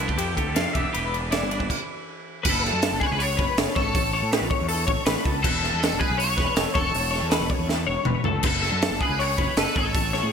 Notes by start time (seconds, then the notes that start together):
Already playing: C2 F2 F3 A3
0.00 B4
0.08 G4, kick
0.18 F2 E4 G4, ride
0.37 D2 G4 A4, kick, ride
0.55 F2 C3 A3 F5, snare, ride
0.73 E1 E2 E3 B3 D4 G4 E5, kick, ride
0.92 E1 G4 B4, ride
1.13 D4, ride
1.30 E3 E4 D5, snare, ride
1.43 G1
1.50 D4 B4, ride
1.60 kick
1.70 kick, crash
2.43 F#1 B4, kick, crash
2.50 A4
2.63 A4, snare
2.73 F#2
2.82 snare, open hi-hat
2.92 F#1
3.00 G#4 B4, kick
3.07 C#5
3.11 C#2 B4
3.19 C#5, open hi-hat
3.37 F#1 B4, kick
3.57 F#1 A4, snare, open hi-hat
3.75 G#1 A4 C#5, kick
3.95 A1, kick, open hi-hat
4.13 C#5
4.22 A2
4.32 B4, snare, open hi-hat
4.42 A1
4.50 C#5, kick
4.61 E2
4.68 A4, open hi-hat
4.87 A1 C#5, kick
5.06 A1 B4, snare, open hi-hat
5.24 C#2 A4, kick
5.42 E1 A4 B4, kick, crash
5.61 A4, snare
5.74 E2
5.81 A4, snare, open hi-hat
5.93 E1
6.00 G#4 B4, kick
6.10 B1
6.18 C#5, open hi-hat
6.37 E1 B4, kick, snare
6.55 E1 A4, snare, open hi-hat
6.74 E1 A4 C#5, kick
6.94 E1, open hi-hat
7.11 C#5, snare
7.22 E2
7.30 B4, snare, open hi-hat
7.41 E1
7.50 C#5, kick
7.59 E2
7.68 A4, snare
7.87 E1 C#5
8.05 E1 B4, mid tom
8.24 C#2 A4, floor tom
8.43 F#1 B4, kick, crash
8.48 A4
8.62 A4, snare
8.72 F#2
8.82 snare, open hi-hat
8.91 F#1
9.01 G#4 B4, kick
9.09 C#2
9.19 C#5, open hi-hat
9.37 F#1 B4, kick
9.57 F#1 A4 B4, snare, open hi-hat
9.76 G#1 A4 C#5, kick
9.94 A1, kick, open hi-hat
10.13 C#5, snare
10.23 A2 G#4